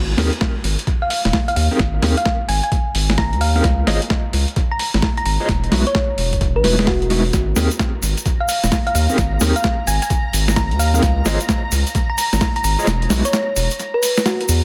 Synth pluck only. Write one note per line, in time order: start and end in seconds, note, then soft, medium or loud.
1.02 1.07 F5 medium
1.10 1.20 F5 medium
1.48 1.53 F5 medium
1.56 1.66 F5 medium
2.17 2.31 F5 medium
2.48 2.58 G#5 medium
2.63 2.69 G#5 medium
3.18 3.36 A#5 loud
3.41 3.50 F5 medium
3.56 3.61 F5 medium
4.71 4.77 A#5 medium
4.80 4.89 A#5 medium
5.17 5.23 A#5 medium
5.26 5.35 A#5 medium
5.87 6.01 C#5 medium
6.56 6.70 B4 medium
6.87 7.33 F#4 medium
8.40 8.46 F5 medium
8.49 8.58 F5 medium
8.87 8.92 F5 medium
8.95 9.04 F5 medium
9.56 9.70 F5 medium
9.87 9.97 G#5 medium
10.02 10.07 G#5 medium
10.56 10.75 A#5 medium
10.79 10.89 F5 loud
10.94 11.00 F5 medium
12.10 12.15 A#5 medium
12.18 12.27 A#5 medium
12.56 12.61 A#5 medium
12.64 12.74 A#5 medium
13.25 13.39 C#5 loud
13.94 14.08 B4 medium
14.25 14.64 F#4 medium